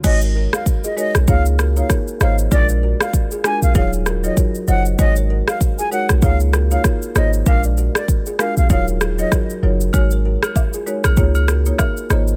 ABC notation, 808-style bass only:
X:1
M:4/4
L:1/16
Q:"Swing 16ths" 1/4=97
K:Db
V:1 name="808-style bass" clef=bass
A,,,3 z4 B,,, D,,4 z2 A,,,2 | B,,,3 z4 B,,, E,,,4 z2 G,,,2 | A,,,3 z4 B,,, D,,4 z2 A,,,2 | B,,,3 z4 B,,, E,,,4 z2 G,,,2 |
A,,,3 z4 B,,, D,,4 z2 A,,,2 |]